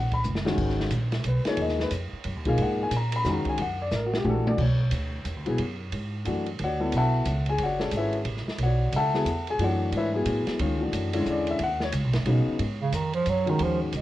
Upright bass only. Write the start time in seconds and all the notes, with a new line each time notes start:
Already playing: A#1
0.24 F#1
0.58 G#1
0.90 A#1
1.24 B1
1.45 muted upright bass stroke
1.57 D#2
1.91 F2
2.13 muted upright bass stroke
2.25 F#2
2.36 D#2
2.47 B1
2.58 G#2
2.91 A#2
3.25 F2
3.46 muted upright bass stroke
3.58 F#2
3.91 A1
4.24 A#1
4.58 B1
4.91 D2
5.25 E2
5.36 D2
5.48 B1
5.58 F#2
5.92 G#2
6.26 F#2
6.59 D2
6.93 B1
7.26 C#2
7.58 F#1
7.92 G#1
8.25 A1
8.47 muted upright bass stroke
8.58 B1
8.92 C#2
9.25 E2
9.59 F#2
9.92 G#2
10.26 A2
10.47 muted upright bass stroke
10.59 D2
10.92 F#2
11.26 E2
11.59 D#2
11.93 C#2
12.04 B1
12.15 G1
12.26 B1
12.47 muted upright bass stroke
12.59 G#2
12.92 F2
13.26 F#2
13.59 D#2
13.93 C#2